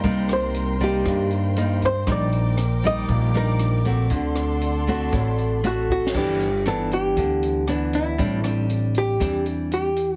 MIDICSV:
0, 0, Header, 1, 6, 480
1, 0, Start_track
1, 0, Tempo, 509338
1, 34, Time_signature, 4, 2, 24, 8
1, 9579, End_track
2, 0, Start_track
2, 0, Title_t, "String section"
2, 0, Program_c, 0, 48
2, 0, Note_on_c, 0, 70, 83
2, 0, Note_on_c, 0, 72, 66
2, 0, Note_on_c, 0, 79, 70
2, 0, Note_on_c, 0, 84, 76
2, 1914, Note_off_c, 0, 79, 0
2, 1914, Note_off_c, 0, 84, 0
2, 1915, Note_off_c, 0, 70, 0
2, 1947, Note_on_c, 0, 79, 68
2, 1948, Note_on_c, 0, 86, 90
2, 1953, Note_on_c, 0, 70, 79
2, 3832, Note_off_c, 0, 72, 0
2, 3848, Note_off_c, 0, 79, 0
2, 3849, Note_off_c, 0, 86, 0
2, 3851, Note_off_c, 0, 70, 0
2, 3871, Note_on_c, 0, 78, 66
2, 3872, Note_on_c, 0, 69, 84
2, 3875, Note_on_c, 0, 74, 69
2, 3875, Note_on_c, 0, 84, 89
2, 5771, Note_off_c, 0, 69, 0
2, 5771, Note_off_c, 0, 78, 0
2, 5773, Note_off_c, 0, 74, 0
2, 5773, Note_off_c, 0, 84, 0
2, 9579, End_track
3, 0, Start_track
3, 0, Title_t, "Hollow-body jazz guitar"
3, 0, Program_c, 1, 26
3, 0, Note_on_c, 1, 70, 73
3, 259, Note_off_c, 1, 70, 0
3, 311, Note_on_c, 1, 72, 84
3, 739, Note_off_c, 1, 72, 0
3, 789, Note_on_c, 1, 67, 68
3, 1218, Note_off_c, 1, 67, 0
3, 1750, Note_on_c, 1, 72, 90
3, 1964, Note_off_c, 1, 72, 0
3, 1995, Note_on_c, 1, 74, 77
3, 2655, Note_off_c, 1, 74, 0
3, 2701, Note_on_c, 1, 75, 106
3, 3133, Note_off_c, 1, 75, 0
3, 3175, Note_on_c, 1, 70, 94
3, 3610, Note_off_c, 1, 70, 0
3, 5341, Note_on_c, 1, 66, 68
3, 5565, Note_off_c, 1, 66, 0
3, 5576, Note_on_c, 1, 66, 76
3, 5807, Note_off_c, 1, 66, 0
3, 5811, Note_on_c, 1, 67, 83
3, 6291, Note_off_c, 1, 67, 0
3, 6294, Note_on_c, 1, 69, 86
3, 6529, Note_off_c, 1, 69, 0
3, 6533, Note_on_c, 1, 67, 87
3, 7204, Note_off_c, 1, 67, 0
3, 7491, Note_on_c, 1, 64, 69
3, 8179, Note_off_c, 1, 64, 0
3, 8179, Note_on_c, 1, 62, 69
3, 8458, Note_off_c, 1, 62, 0
3, 8462, Note_on_c, 1, 67, 99
3, 8895, Note_off_c, 1, 67, 0
3, 9175, Note_on_c, 1, 67, 67
3, 9534, Note_off_c, 1, 67, 0
3, 9534, Note_on_c, 1, 66, 67
3, 9579, Note_off_c, 1, 66, 0
3, 9579, End_track
4, 0, Start_track
4, 0, Title_t, "Nylon-string guitar"
4, 0, Program_c, 2, 24
4, 34, Note_on_c, 2, 48, 66
4, 37, Note_on_c, 2, 55, 63
4, 43, Note_on_c, 2, 58, 65
4, 44, Note_on_c, 2, 63, 63
4, 716, Note_off_c, 2, 55, 0
4, 717, Note_off_c, 2, 58, 0
4, 720, Note_off_c, 2, 63, 0
4, 759, Note_on_c, 2, 55, 66
4, 764, Note_on_c, 2, 58, 61
4, 769, Note_on_c, 2, 63, 71
4, 970, Note_off_c, 2, 48, 0
4, 997, Note_on_c, 2, 43, 59
4, 1437, Note_off_c, 2, 55, 0
4, 1440, Note_off_c, 2, 58, 0
4, 1441, Note_off_c, 2, 63, 0
4, 1476, Note_on_c, 2, 55, 57
4, 1481, Note_on_c, 2, 58, 62
4, 1485, Note_on_c, 2, 63, 65
4, 1783, Note_off_c, 2, 55, 0
4, 1785, Note_off_c, 2, 58, 0
4, 1788, Note_off_c, 2, 63, 0
4, 1930, Note_off_c, 2, 43, 0
4, 1949, Note_on_c, 2, 46, 68
4, 1954, Note_on_c, 2, 55, 56
4, 1955, Note_on_c, 2, 62, 60
4, 1962, Note_on_c, 2, 63, 71
4, 2428, Note_off_c, 2, 55, 0
4, 2431, Note_off_c, 2, 62, 0
4, 2432, Note_off_c, 2, 63, 0
4, 2675, Note_on_c, 2, 55, 69
4, 2686, Note_on_c, 2, 63, 72
4, 2886, Note_off_c, 2, 46, 0
4, 2912, Note_on_c, 2, 46, 54
4, 3114, Note_off_c, 2, 55, 0
4, 3119, Note_off_c, 2, 63, 0
4, 3149, Note_on_c, 2, 55, 66
4, 3156, Note_on_c, 2, 62, 63
4, 3160, Note_on_c, 2, 63, 76
4, 3591, Note_off_c, 2, 55, 0
4, 3594, Note_off_c, 2, 62, 0
4, 3597, Note_off_c, 2, 63, 0
4, 3630, Note_on_c, 2, 57, 60
4, 3635, Note_on_c, 2, 60, 56
4, 3640, Note_on_c, 2, 66, 65
4, 3846, Note_off_c, 2, 46, 0
4, 3870, Note_on_c, 2, 50, 60
4, 4551, Note_off_c, 2, 57, 0
4, 4553, Note_off_c, 2, 60, 0
4, 4556, Note_off_c, 2, 66, 0
4, 4598, Note_on_c, 2, 57, 65
4, 4603, Note_on_c, 2, 60, 72
4, 4607, Note_on_c, 2, 66, 72
4, 4805, Note_off_c, 2, 50, 0
4, 4825, Note_on_c, 2, 45, 58
4, 5275, Note_off_c, 2, 57, 0
4, 5278, Note_off_c, 2, 60, 0
4, 5279, Note_off_c, 2, 66, 0
4, 5311, Note_on_c, 2, 57, 71
4, 5316, Note_on_c, 2, 60, 58
4, 5321, Note_on_c, 2, 66, 70
4, 5752, Note_off_c, 2, 57, 0
4, 5755, Note_off_c, 2, 60, 0
4, 5756, Note_off_c, 2, 66, 0
4, 5763, Note_off_c, 2, 45, 0
4, 5786, Note_on_c, 2, 52, 62
4, 5790, Note_on_c, 2, 43, 52
4, 5793, Note_on_c, 2, 59, 51
4, 5795, Note_on_c, 2, 62, 64
4, 6097, Note_off_c, 2, 52, 0
4, 6100, Note_off_c, 2, 59, 0
4, 6101, Note_off_c, 2, 62, 0
4, 6276, Note_on_c, 2, 52, 55
4, 6282, Note_on_c, 2, 59, 59
4, 6283, Note_on_c, 2, 62, 59
4, 6726, Note_off_c, 2, 43, 0
4, 6763, Note_on_c, 2, 50, 52
4, 7195, Note_off_c, 2, 52, 0
4, 7198, Note_off_c, 2, 59, 0
4, 7198, Note_off_c, 2, 62, 0
4, 7235, Note_on_c, 2, 52, 55
4, 7240, Note_on_c, 2, 59, 53
4, 7244, Note_on_c, 2, 62, 61
4, 7693, Note_off_c, 2, 50, 0
4, 7694, Note_off_c, 2, 52, 0
4, 7696, Note_off_c, 2, 59, 0
4, 7698, Note_off_c, 2, 62, 0
4, 7711, Note_on_c, 2, 45, 61
4, 7711, Note_on_c, 2, 55, 54
4, 7716, Note_on_c, 2, 60, 63
4, 7719, Note_on_c, 2, 62, 61
4, 7912, Note_off_c, 2, 55, 0
4, 7915, Note_off_c, 2, 60, 0
4, 7917, Note_off_c, 2, 62, 0
4, 7949, Note_on_c, 2, 55, 54
4, 7955, Note_on_c, 2, 60, 55
4, 7955, Note_on_c, 2, 62, 49
4, 8633, Note_off_c, 2, 55, 0
4, 8635, Note_off_c, 2, 60, 0
4, 8635, Note_off_c, 2, 62, 0
4, 8648, Note_off_c, 2, 45, 0
4, 8668, Note_on_c, 2, 52, 45
4, 8673, Note_on_c, 2, 55, 51
4, 8674, Note_on_c, 2, 60, 49
4, 8678, Note_on_c, 2, 62, 66
4, 9318, Note_off_c, 2, 55, 0
4, 9318, Note_off_c, 2, 60, 0
4, 9321, Note_off_c, 2, 62, 0
4, 9579, Note_off_c, 2, 52, 0
4, 9579, End_track
5, 0, Start_track
5, 0, Title_t, "Upright bass"
5, 0, Program_c, 3, 32
5, 35, Note_on_c, 3, 36, 92
5, 955, Note_off_c, 3, 36, 0
5, 993, Note_on_c, 3, 43, 90
5, 1914, Note_off_c, 3, 43, 0
5, 1949, Note_on_c, 3, 34, 102
5, 2872, Note_off_c, 3, 34, 0
5, 2907, Note_on_c, 3, 34, 94
5, 3830, Note_off_c, 3, 34, 0
5, 3869, Note_on_c, 3, 38, 93
5, 4791, Note_off_c, 3, 38, 0
5, 4831, Note_on_c, 3, 33, 88
5, 5752, Note_off_c, 3, 33, 0
5, 5790, Note_on_c, 3, 31, 90
5, 6713, Note_off_c, 3, 31, 0
5, 6752, Note_on_c, 3, 38, 83
5, 7715, Note_on_c, 3, 33, 85
5, 7729, Note_off_c, 3, 38, 0
5, 8636, Note_off_c, 3, 33, 0
5, 8673, Note_on_c, 3, 40, 72
5, 9579, Note_off_c, 3, 40, 0
5, 9579, End_track
6, 0, Start_track
6, 0, Title_t, "Drums"
6, 33, Note_on_c, 9, 36, 64
6, 33, Note_on_c, 9, 42, 37
6, 127, Note_off_c, 9, 42, 0
6, 128, Note_off_c, 9, 36, 0
6, 273, Note_on_c, 9, 37, 62
6, 273, Note_on_c, 9, 42, 28
6, 367, Note_off_c, 9, 37, 0
6, 367, Note_off_c, 9, 42, 0
6, 514, Note_on_c, 9, 42, 50
6, 608, Note_off_c, 9, 42, 0
6, 752, Note_on_c, 9, 36, 23
6, 758, Note_on_c, 9, 42, 27
6, 846, Note_off_c, 9, 36, 0
6, 852, Note_off_c, 9, 42, 0
6, 992, Note_on_c, 9, 36, 58
6, 994, Note_on_c, 9, 37, 61
6, 994, Note_on_c, 9, 42, 42
6, 1086, Note_off_c, 9, 36, 0
6, 1088, Note_off_c, 9, 37, 0
6, 1088, Note_off_c, 9, 42, 0
6, 1231, Note_on_c, 9, 42, 28
6, 1326, Note_off_c, 9, 42, 0
6, 1475, Note_on_c, 9, 42, 49
6, 1569, Note_off_c, 9, 42, 0
6, 1711, Note_on_c, 9, 36, 24
6, 1714, Note_on_c, 9, 42, 30
6, 1806, Note_off_c, 9, 36, 0
6, 1808, Note_off_c, 9, 42, 0
6, 1949, Note_on_c, 9, 37, 54
6, 1949, Note_on_c, 9, 42, 42
6, 1950, Note_on_c, 9, 36, 61
6, 2043, Note_off_c, 9, 37, 0
6, 2043, Note_off_c, 9, 42, 0
6, 2044, Note_off_c, 9, 36, 0
6, 2191, Note_on_c, 9, 42, 26
6, 2285, Note_off_c, 9, 42, 0
6, 2426, Note_on_c, 9, 37, 71
6, 2426, Note_on_c, 9, 42, 49
6, 2520, Note_off_c, 9, 37, 0
6, 2520, Note_off_c, 9, 42, 0
6, 2668, Note_on_c, 9, 42, 29
6, 2669, Note_on_c, 9, 36, 22
6, 2762, Note_off_c, 9, 42, 0
6, 2763, Note_off_c, 9, 36, 0
6, 2907, Note_on_c, 9, 42, 36
6, 2908, Note_on_c, 9, 36, 61
6, 3002, Note_off_c, 9, 36, 0
6, 3002, Note_off_c, 9, 42, 0
6, 3147, Note_on_c, 9, 42, 24
6, 3241, Note_off_c, 9, 42, 0
6, 3385, Note_on_c, 9, 37, 62
6, 3385, Note_on_c, 9, 42, 51
6, 3479, Note_off_c, 9, 37, 0
6, 3479, Note_off_c, 9, 42, 0
6, 3627, Note_on_c, 9, 42, 29
6, 3629, Note_on_c, 9, 36, 27
6, 3721, Note_off_c, 9, 42, 0
6, 3723, Note_off_c, 9, 36, 0
6, 3862, Note_on_c, 9, 42, 43
6, 3867, Note_on_c, 9, 36, 59
6, 3956, Note_off_c, 9, 42, 0
6, 3961, Note_off_c, 9, 36, 0
6, 4103, Note_on_c, 9, 37, 60
6, 4103, Note_on_c, 9, 42, 30
6, 4197, Note_off_c, 9, 37, 0
6, 4197, Note_off_c, 9, 42, 0
6, 4349, Note_on_c, 9, 42, 46
6, 4443, Note_off_c, 9, 42, 0
6, 4589, Note_on_c, 9, 36, 22
6, 4592, Note_on_c, 9, 42, 28
6, 4683, Note_off_c, 9, 36, 0
6, 4686, Note_off_c, 9, 42, 0
6, 4829, Note_on_c, 9, 36, 59
6, 4831, Note_on_c, 9, 37, 60
6, 4831, Note_on_c, 9, 42, 42
6, 4924, Note_off_c, 9, 36, 0
6, 4925, Note_off_c, 9, 37, 0
6, 4925, Note_off_c, 9, 42, 0
6, 5074, Note_on_c, 9, 42, 29
6, 5168, Note_off_c, 9, 42, 0
6, 5313, Note_on_c, 9, 42, 52
6, 5407, Note_off_c, 9, 42, 0
6, 5551, Note_on_c, 9, 36, 43
6, 5645, Note_off_c, 9, 36, 0
6, 5715, Note_on_c, 9, 38, 65
6, 5790, Note_on_c, 9, 36, 53
6, 5790, Note_on_c, 9, 37, 49
6, 5790, Note_on_c, 9, 49, 54
6, 5809, Note_off_c, 9, 38, 0
6, 5884, Note_off_c, 9, 36, 0
6, 5884, Note_off_c, 9, 37, 0
6, 5884, Note_off_c, 9, 49, 0
6, 6034, Note_on_c, 9, 42, 40
6, 6128, Note_off_c, 9, 42, 0
6, 6272, Note_on_c, 9, 37, 55
6, 6272, Note_on_c, 9, 42, 39
6, 6367, Note_off_c, 9, 37, 0
6, 6367, Note_off_c, 9, 42, 0
6, 6514, Note_on_c, 9, 42, 35
6, 6609, Note_off_c, 9, 42, 0
6, 6753, Note_on_c, 9, 36, 52
6, 6754, Note_on_c, 9, 42, 45
6, 6847, Note_off_c, 9, 36, 0
6, 6849, Note_off_c, 9, 42, 0
6, 6999, Note_on_c, 9, 42, 36
6, 7093, Note_off_c, 9, 42, 0
6, 7233, Note_on_c, 9, 37, 58
6, 7233, Note_on_c, 9, 42, 40
6, 7327, Note_off_c, 9, 37, 0
6, 7327, Note_off_c, 9, 42, 0
6, 7475, Note_on_c, 9, 42, 42
6, 7569, Note_off_c, 9, 42, 0
6, 7714, Note_on_c, 9, 36, 51
6, 7717, Note_on_c, 9, 42, 52
6, 7809, Note_off_c, 9, 36, 0
6, 7811, Note_off_c, 9, 42, 0
6, 7952, Note_on_c, 9, 37, 55
6, 7952, Note_on_c, 9, 42, 42
6, 8046, Note_off_c, 9, 37, 0
6, 8046, Note_off_c, 9, 42, 0
6, 8195, Note_on_c, 9, 42, 41
6, 8289, Note_off_c, 9, 42, 0
6, 8430, Note_on_c, 9, 42, 40
6, 8524, Note_off_c, 9, 42, 0
6, 8673, Note_on_c, 9, 36, 57
6, 8676, Note_on_c, 9, 37, 50
6, 8676, Note_on_c, 9, 42, 55
6, 8767, Note_off_c, 9, 36, 0
6, 8770, Note_off_c, 9, 37, 0
6, 8770, Note_off_c, 9, 42, 0
6, 8913, Note_on_c, 9, 42, 38
6, 9008, Note_off_c, 9, 42, 0
6, 9156, Note_on_c, 9, 42, 47
6, 9250, Note_off_c, 9, 42, 0
6, 9391, Note_on_c, 9, 42, 45
6, 9485, Note_off_c, 9, 42, 0
6, 9579, End_track
0, 0, End_of_file